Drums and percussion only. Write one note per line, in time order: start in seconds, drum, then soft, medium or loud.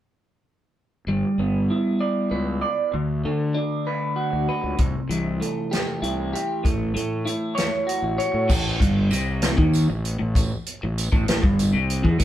4.78 kick medium
4.78 closed hi-hat medium
5.10 closed hi-hat soft
5.42 closed hi-hat soft
5.72 snare medium
5.72 closed hi-hat medium
6.03 closed hi-hat soft
6.35 closed hi-hat medium
6.65 kick medium
6.65 closed hi-hat medium
6.96 closed hi-hat soft
7.27 closed hi-hat medium
7.57 snare medium
7.57 closed hi-hat medium
7.89 closed hi-hat medium
8.20 closed hi-hat soft
8.49 kick loud
8.49 crash loud
8.49 tambourine medium
8.65 tambourine soft
8.81 kick medium
8.81 closed hi-hat medium
9.11 closed hi-hat medium
9.11 tambourine medium
9.42 snare loud
9.42 closed hi-hat medium
9.58 kick loud
9.73 closed hi-hat medium
9.73 tambourine medium
10.05 closed hi-hat medium
10.35 kick medium
10.35 closed hi-hat medium
10.35 tambourine medium
10.52 tambourine soft
10.66 closed hi-hat medium
10.98 closed hi-hat medium
10.98 tambourine medium
11.13 kick medium
11.28 snare loud
11.28 closed hi-hat medium
11.43 kick loud
11.59 closed hi-hat medium
11.59 tambourine medium
11.90 closed hi-hat medium
12.05 kick medium
12.19 kick medium
12.19 closed hi-hat medium
12.19 tambourine medium